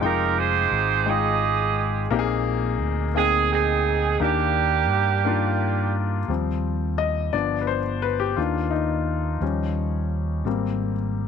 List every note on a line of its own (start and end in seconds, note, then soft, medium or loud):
0.01 0.68 F1 loud
0.01 0.95 G#3 medium
0.01 0.95 D#4 medium
0.01 0.36 D#4 medium
0.01 0.96 F4 medium
0.01 1.03 G4 medium
0.01 0.38 A#4 medium
0.01 0.96 G5 medium
0.38 1.38 D#4 medium
0.38 1.06 G#4 medium
0.38 1.08 C5 medium
0.71 2.07 G#1 medium
1.06 2.00 G#3 medium
1.06 2.00 D#4 medium
1.06 2.01 F4 medium
1.06 2.07 G4 medium
1.06 2.07 G#4 medium
1.06 1.86 D#5 medium
1.06 2.01 G5 medium
2.11 2.81 A#1 medium
2.11 3.12 A#2 medium
2.11 3.05 A#3 medium
2.11 3.05 C4 medium
2.11 3.05 D#4 medium
2.11 2.18 G4 medium
2.19 3.09 G#4 loud
2.81 4.16 D2 medium
3.14 4.09 A#3 medium
3.14 4.09 C4 medium
3.14 4.09 D#4 medium
3.14 3.49 G#4 loud
3.14 4.10 G5 medium
3.52 4.17 C4 medium
3.52 4.17 D#4 medium
3.52 4.17 G#4 medium
4.20 4.89 D#2 medium
4.20 5.21 D#3 medium
4.20 5.14 A#3 medium
4.20 5.91 A#3 medium
4.20 5.14 D4 medium
4.20 5.91 D4 medium
4.20 5.15 G4 medium
4.20 5.95 G4 medium
4.89 6.24 G2 medium
5.25 6.19 D#3 medium
5.25 6.18 A#3 medium
5.25 6.19 D4 medium
5.25 6.19 F4 medium
6.28 7.29 D#2 medium
6.28 7.29 F3 soft
6.28 7.29 G3 soft
6.28 7.30 C4 soft
6.98 7.34 D#5 medium
7.33 8.33 G1 medium
7.33 7.79 F3 soft
7.33 7.80 B3 soft
7.33 7.80 D4 soft
7.33 7.62 D5 medium
7.61 7.68 B4 medium
7.67 8.03 C5 medium
8.02 8.20 B4 medium
8.20 8.38 G4 medium
8.36 9.38 D#2 medium
8.36 9.37 D#3 soft
8.36 9.38 A#3 soft
8.36 9.38 D4 soft
8.36 8.73 F4 medium
8.71 10.41 D#4 medium
9.41 10.41 D#2 medium
9.41 10.42 F3 soft
9.41 10.42 G3 soft
9.41 10.42 C#4 soft
10.45 11.28 G#1 medium
10.45 10.92 G3 soft
10.45 10.93 A#3 soft
10.45 10.93 C4 soft